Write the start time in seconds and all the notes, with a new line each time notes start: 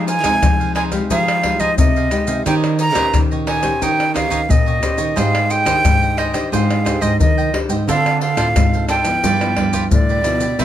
Already playing: F3
0.07 D#4 G#4 C5 F5 G#5, pandeiro, maracas
0.24 C3 G#3 D#4 G#4 C5 F5, pandeiro, tamborim, maracas, surdo
0.43 C3 F3, pandeiro, tamborim, maracas, surdo
0.60 G#4 C5 F5, pandeiro, maracas
0.75 D#4 G#4 C5 F5 G#5, pandeiro, tamborim
0.91 G#3 D#4 G4 G#4 C5 F5, pandeiro, tamborim, maracas, surdo
1.10 F3 D#4 G#4 C5 F5, pandeiro, maracas, surdo
1.28 pandeiro, tamborim, maracas
1.43 G#3 D#4 G4 G#4 C5 F5, pandeiro, tamborim, surdo
1.59 F3 D#4 G#4 C5 D#5 F5, pandeiro, maracas, surdo
1.78 C3 D#5, pandeiro, maracas, surdo
1.96 G#4 C5 F5, pandeiro, maracas
2.11 G#3 D#4 G4, pandeiro, tamborim, maracas
2.27 C3 G#4 C5 F5, pandeiro, maracas
2.46 D#3 C#4 D#4 G4 C5 C#5 D#5 G5, pandeiro, tamborim, maracas, surdo
2.64 pandeiro, tamborim, maracas
2.79 D#4 G4 C#5 D#5 A#5, pandeiro, maracas
2.95 A#2 C#4 D#4 G4 C5 C#5 D#5, pandeiro, tamborim, maracas, surdo
3.14 A#2 D#3, pandeiro, tamborim, maracas, surdo
3.31 G4 C#5 D#5, pandeiro, maracas
3.47 D#4 G4 C#5 D#5 G#5, pandeiro, tamborim
3.62 C#4 G4 C5 C#5 D#5, pandeiro, tamborim, maracas, surdo
3.81 D#3 D#4 G4 C#5 D#5 G5, pandeiro, maracas, surdo
4.00 pandeiro, tamborim, maracas
4.14 C#4 D#4 G4 C5 C#5 D#5 F5, pandeiro, tamborim, maracas, surdo
4.30 D#3 D#4 G4 C#5 D#5, pandeiro, maracas, surdo
4.49 A#2 D#5, pandeiro, maracas, surdo
4.66 G4 C#5 D#5, pandeiro, maracas
4.83 C#4 G4 C5, pandeiro, tamborim, maracas, surdo
4.97 D#3 G4 C#5 D#5, pandeiro, maracas
5.16 G#2 G#3 G4 G#4 C5 D#5 F5 G5, pandeiro, tamborim, maracas, surdo
5.35 pandeiro, tamborim, maracas
5.50 G#4 C5 D#5 G5, pandeiro, maracas
5.65 D#3 D4 G4 G#4 C5 D#5 G5, pandeiro, tamborim, maracas, surdo
5.84 G#2 D#3, pandeiro, tamborim, maracas, surdo
6.01 C5 D#5 G5, pandeiro, maracas
6.17 G#4 C5 D#5 G5, pandeiro, tamborim
6.33 D4 G4 C5 D#5 G5, pandeiro, tamborim, maracas, surdo
6.52 G#2 G#3 G#4 C5 D#5 F5 G5, pandeiro, maracas, surdo
6.71 pandeiro, tamborim, maracas
6.85 D4 G4 G#4 C5 D#5 G5, pandeiro, tamborim, maracas, surdo
7.01 G#2 G#4 C5 D#5 G5, pandeiro, maracas, surdo
7.20 D#3 D#5, pandeiro, maracas, surdo
7.38 C5 D#5 G5, pandeiro, maracas
7.53 D4 G4 C5, pandeiro, tamborim, surdo
7.69 G#2 C5 D#5 G5, pandeiro, maracas
7.87 D3 C4 D4 F4 A4 C5 F5, pandeiro, tamborim, maracas, surdo
8.06 pandeiro, tamborim, maracas
8.21 D4 A4 C5 F5, pandeiro
8.37 A2 C4 D4 F4 A4 C5 F5, pandeiro, tamborim, maracas, surdo
8.56 G#2, pandeiro, tamborim, maracas, surdo
8.73 A4 C5 F5, pandeiro, maracas
8.89 D4 A4 C5 F5 G5, pandeiro, tamborim, maracas
9.04 F3 B3 E4 A4 C5 F5, pandeiro, tamborim, maracas, surdo
9.23 G2 F4 G4 B4 D5, pandeiro, maracas, surdo
9.41 F3 B3 E4, pandeiro, tamborim, maracas
9.56 G2 F3 B3 E4 F4 G4 B4 D5, pandeiro, tamborim, surdo
9.73 F4 G4 B4 D5, pandeiro, maracas, surdo
9.91 A2 D3 D5, pandeiro, maracas, surdo
10.09 G4 B4 D5, pandeiro, maracas
10.24 B2 F3 B3 E4, pandeiro, tamborim, maracas
10.40 G4 B4 D5, pandeiro, maracas
10.59 C3 G3 E4 B4 C5 E5, pandeiro, tamborim, maracas, surdo